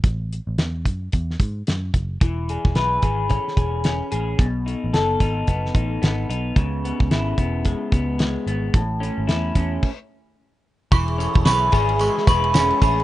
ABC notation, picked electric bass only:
X:1
M:4/4
L:1/16
Q:"Swing 16ths" 1/4=110
K:E
V:1 name="Picked electric bass" clef=bass
A,,,3 A,,, E,,2 F,,2 E,,2 G,,2 F,,2 F,,,2 | E,,,3 E,,, B,,,2 G,,,3 z E,,,4 A,,,2 | B,,,3 A,,, F,,,2 G,,,2 F,,,2 A,,,2 G,,,2 B,,,2 | C,,3 C,, G,,,2 E,,,3 z C,,4 G,,,2 |
A,,,3 G,,, E,,2 E,,2 z8 | E,,,3 E,,, B,,,2 G,,,3 z E,,,4 A,,,2 |]